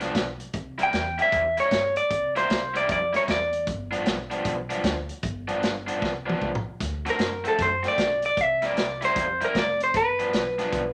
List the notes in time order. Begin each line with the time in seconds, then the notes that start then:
0.00 G2 F3 B3 D4, snare, closed hi-hat
0.15 B1, kick, snare, closed hi-hat
0.40 closed hi-hat
0.54 C2, kick, closed hi-hat
0.78 C3 G3 A#3 E4, closed hi-hat
0.83 G5
0.93 E2, snare, closed hi-hat
1.18 C3 G3 A#3 E4, closed hi-hat
1.22 E5
1.32 E2, kick, closed hi-hat
1.57 C3 G3 A#3 E4 C#5, closed hi-hat
1.71 G2, kick, snare, closed hi-hat
1.96 D5, closed hi-hat
2.11 C2, kick, closed hi-hat
2.36 C3 G3 A#3 E4 C5, snare, closed hi-hat
2.50 C2, snare, closed hi-hat
2.74 C3 G3 A#3 E4 D5, closed hi-hat
2.89 F2 D5, kick, closed hi-hat
3.13 C3 G3 A#3 E4 C#5, snare, closed hi-hat
3.28 E2 D5, kick, snare, closed hi-hat
3.53 closed hi-hat
3.67 G1, kick, closed hi-hat
3.91 G2 F3 B3 D4, closed hi-hat
4.06 B1, snare, closed hi-hat
4.30 G2 F3 B3 D4, closed hi-hat
4.45 B1, kick, closed hi-hat
4.70 G2 F3 B3 D4, closed hi-hat
4.84 D2, kick, snare, closed hi-hat
5.09 closed hi-hat
5.23 G1, kick, closed hi-hat
5.48 G2 F3 B3 D4, closed hi-hat
5.62 G1, snare, closed hi-hat
5.87 G2 F3 B3 D4, closed hi-hat
6.02 C2, kick, snare
6.26 G2 F3 B3 D4, high tom
6.42 B1, kick, mid tom
6.55 mid tom
6.80 D2, kick, snare, closed hi-hat
7.06 D3 A3 C4 F#4, snare, closed hi-hat
7.10 A#4
7.18 F#2, snare, closed hi-hat
7.44 D3 A3 C4 F#4 A4, closed hi-hat
7.59 F#2 C5, kick, closed hi-hat
7.83 D3 A3 C4 F#4, snare, closed hi-hat
7.88 D5
7.98 B1, kick, snare, closed hi-hat
8.22 D5, closed hi-hat
8.37 C2 E5, kick, closed hi-hat
8.62 C3 G3 A#3 E4 D5, snare, closed hi-hat
8.76 C2, snare, closed hi-hat
9.01 C3 G3 A#3 E4 C5, snare, closed hi-hat
9.16 F2, kick, closed hi-hat
9.41 C3 G3 A#3 E4 A#4, closed hi-hat
9.55 F1 D5, kick, snare, closed hi-hat
9.80 C5, closed hi-hat
9.94 G1 B4, kick, snare, closed hi-hat
10.19 G2 F3 B3 D4, closed hi-hat
10.33 B1, snare, closed hi-hat
10.58 G2 F3 B3 D4, snare, closed hi-hat
10.73 B1, kick, closed hi-hat